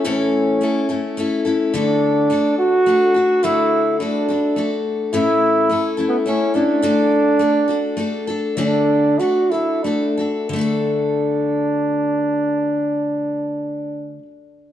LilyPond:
<<
  \new Staff \with { instrumentName = "Steel-string acoustic guitar" } { \time 3/4 \key d \major \tempo 4 = 106 <a, e a cis' e' a'>4 <a cis' e' a'>8 <a cis' e' a'>8 <a cis' e' a'>8 <a cis' e' a'>8 | <d a d' fis' a'>4 <a d' fis' a'>4 <a d' fis' a'>8 <d' fis' a'>8 | <d a d' fis' a'>4 <a d' fis' a'>8 <d' fis' a'>8 <a d' fis' a'>4 | <a, e a cis' e' a'>4 <a cis' e' a'>8 <a cis' e' a'>8 <a cis' e' a'>8 <a cis' e' a'>8 |
<d a d' fis' a'>4 <a d' fis' a'>8 <d' fis' a'>8 <a d' fis' a'>8 <d' fis' a'>8 | <d a d' fis' a'>4 <a d' fis' a'>8 <d' fis' a'>8 <a d' fis' a'>8 <d' fis' a'>8 | <d a d' fis' a'>2.~ | <d a d' fis' a'>2. | }
  \new Staff \with { instrumentName = "Trombone" } { \time 3/4 \key d \major cis'2 r4 | d'4. fis'4. | e'4 d'4. r8 | e'4~ \tuplet 3/2 { e'8. r16 b8 } cis'8 d'8~ |
d'2~ d'8 r8 | d'4 fis'8 e'8 d'8. r16 | d'2.~ | d'2. | }
>>